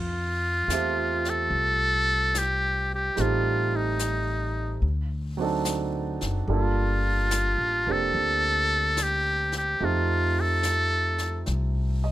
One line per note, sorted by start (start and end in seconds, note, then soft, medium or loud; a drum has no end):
0.00 0.65 F2 medium
0.00 1.31 F4 medium
0.68 1.47 E2 medium
0.68 3.15 A3 soft
0.68 3.16 C4 soft
0.68 3.17 F4 soft
0.68 snare soft
0.68 hi-hat pedal medium
0.72 3.19 G4 soft
0.72 3.19 E5 soft
1.25 snare soft
1.30 2.39 A4 medium
1.50 3.13 C2 medium
1.50 brush sweep soft
2.35 2.92 G4 medium
2.35 snare soft
2.35 hi-hat pedal soft
2.94 3.22 G4 medium
3.15 4.79 A1 medium
3.15 4.82 G3 soft
3.15 4.82 A3 soft
3.15 4.83 C4 soft
3.15 brush sweep soft
3.15 snare soft
3.19 4.84 D#4 soft
3.19 3.77 F4 medium
3.19 4.85 G4 soft
3.76 4.84 D#4 medium
3.99 snare soft
3.99 hi-hat pedal medium
4.82 6.17 D2 medium
4.82 brush sweep soft
5.37 6.48 F#3 soft
5.37 6.48 C4 soft
5.37 6.48 D4 soft
5.41 6.50 D#4 soft
5.41 6.48 A4 medium
5.65 snare soft
5.65 hi-hat pedal medium
6.21 6.47 F#1 medium
6.21 snare soft
6.48 7.55 G1 medium
6.48 9.80 G3 soft
6.48 7.85 A#3 soft
6.48 7.87 D4 soft
6.48 9.80 F4 soft
6.48 9.81 A4 soft
6.48 brush sweep soft
6.53 7.93 F4 medium
7.31 snare soft
7.31 hi-hat pedal medium
7.58 7.84 A1 soft
7.86 8.13 F1 medium
7.86 9.80 A#3 soft
7.86 9.80 C4 soft
7.86 9.81 D4 soft
7.86 9.81 G4 soft
7.92 9.04 A4 loud
8.14 9.76 D2 medium
8.14 brush sweep soft
8.97 snare soft
8.97 hi-hat pedal soft
9.03 9.56 G4 medium
9.52 snare soft
9.57 9.86 G4 medium
9.80 11.42 F2 medium
9.80 12.12 A3 soft
9.80 12.12 C4 soft
9.80 12.12 D#4 soft
9.80 12.12 F4 soft
9.80 12.12 G4 soft
9.80 brush sweep soft
9.84 10.42 F4 medium
10.41 11.48 A4 medium
10.63 snare soft
10.63 hi-hat pedal soft
11.18 snare soft
11.46 12.12 C2 medium
11.46 brush sweep soft
11.46 snare soft
12.04 12.12 D#5 soft